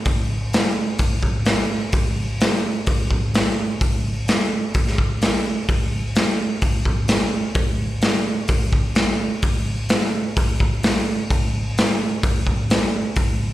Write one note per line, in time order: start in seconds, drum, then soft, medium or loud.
0.05 kick loud
0.05 open hi-hat medium
0.53 snare loud
0.53 open hi-hat medium
0.99 kick loud
0.99 open hi-hat medium
1.23 kick medium
1.45 snare loud
1.45 open hi-hat medium
1.92 kick loud
1.92 open hi-hat medium
2.40 snare loud
2.40 open hi-hat medium
2.86 kick loud
2.86 open hi-hat medium
3.11 kick medium
3.34 snare loud
3.34 open hi-hat medium
3.81 kick loud
3.81 open hi-hat medium
4.28 snare loud
4.28 open hi-hat medium
4.74 kick loud
4.74 open hi-hat medium
4.87 snare soft
4.98 kick medium
5.21 snare loud
5.21 open hi-hat medium
5.69 kick loud
5.69 open hi-hat medium
6.15 snare loud
6.15 open hi-hat medium
6.62 kick loud
6.62 open hi-hat medium
6.85 kick medium
7.08 snare loud
7.08 open hi-hat medium
7.55 kick loud
7.55 open hi-hat medium
8.01 snare loud
8.01 open hi-hat medium
8.48 kick loud
8.48 open hi-hat medium
8.73 kick medium
8.95 snare loud
8.95 open hi-hat medium
9.42 kick loud
9.42 open hi-hat medium
9.89 snare loud
9.89 open hi-hat medium
10.36 kick loud
10.36 open hi-hat medium
10.60 kick medium
10.83 snare loud
10.83 open hi-hat medium
11.30 kick loud
11.30 open hi-hat medium
11.78 snare loud
11.78 open hi-hat medium
12.23 kick loud
12.23 open hi-hat medium
12.47 kick medium
12.70 snare loud
12.70 open hi-hat medium
13.16 kick loud
13.16 open hi-hat medium